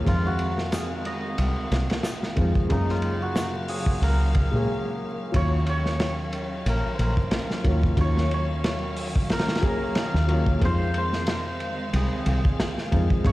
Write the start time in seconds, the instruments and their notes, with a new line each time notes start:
Already playing: string section D#3 F5, hammered dulcimer A#4 C5, synth texture A#4
0.05 fingered electric bass F2, upright piano G#3 C4 D#4, string section G#3 C4, hammered dulcimer F4, kick, ride
0.09 upright piano F5
0.27 hammered dulcimer F#4
0.39 ride
0.58 snare
0.72 hammered dulcimer G#4, snare, ride, shaker
1.05 hammered dulcimer D#5, ride
1.38 fingered electric bass C2, ride
1.71 fingered electric bass C2, snare, ride
1.90 snare, ride
2.03 snare, ride, shaker
2.23 snare
2.36 fingered electric bass F2, upright piano G#3 C4 D#4 F4, kick, ride
2.55 kick
2.69 fingered electric bass F#2, string section C#3 F#3 A#3 F5, upright piano G#3 A#3 C#4 F4, hammered dulcimer D#4, kick, ride
2.89 hammered dulcimer F4, snare
3.02 ride
3.22 hammered dulcimer F#4
3.36 snare, ride, shaker
3.68 hammered dulcimer G#4, open hi-hat
3.86 kick
4.02 fingered electric bass C#2, hammered dulcimer A#4, ride
4.35 kick, ride
4.51 fingered electric bass A#2, upright piano G#3 A#3 C#4
4.56 upright piano G#4
5.32 fingered electric bass D#2, string section D#3 F#3 C#4 F5, upright piano F#3 A#3 C#4 F4, hammered dulcimer C#5, kick, ride
5.67 hammered dulcimer C#5, ride
5.86 snare
6.00 snare, ride
6.33 ride
6.66 fingered electric bass A#1, hammered dulcimer A#4, ride
6.94 hammered dulcimer C5
6.99 fingered electric bass A#1, hammered dulcimer A#4, ride
7.17 kick
7.31 snare, ride
7.51 snare
7.64 fingered electric bass D#2, upright piano F#3 A#3 C#4 F4, kick, ride
7.83 kick
7.97 fingered electric bass D#2, upright piano F#3 A#3 C#4 F4, hammered dulcimer C#5, kick, ride
8.17 snare
8.31 hammered dulcimer C#5, ride
8.64 snare, ride
8.97 open hi-hat
9.16 kick
9.30 hammered dulcimer A#4, snare, ride
9.39 snare, ride
9.49 snare, ride
9.55 snare, ride
9.61 upright piano F#3 A#3 C#4 G#4, kick, ride
9.66 hammered dulcimer A#4
9.95 snare, ride
10.14 fingered electric bass D#2, snare
10.28 upright piano F#3 A#3 C#4 F4, ride
10.46 kick
10.60 fingered electric bass F2, upright piano G#3 C4 D#4, string section G#3 C4, kick, ride
10.64 upright piano F4, hammered dulcimer C5
10.94 hammered dulcimer C5, ride
11.13 snare
11.27 snare, ride
11.60 ride
11.93 fingered electric bass C2, hammered dulcimer G#4, ride
12.26 fingered electric bass C2, hammered dulcimer G#4, ride
12.45 kick
12.60 snare, ride
12.78 snare
12.91 fingered electric bass F2, upright piano G#3 C4 D#4 F4, kick, ride
13.10 kick
13.24 fingered electric bass F#2, string section C#3 F#3 A#3, upright piano G#3 A#3 C#4 F4, hammered dulcimer C#5, kick, ride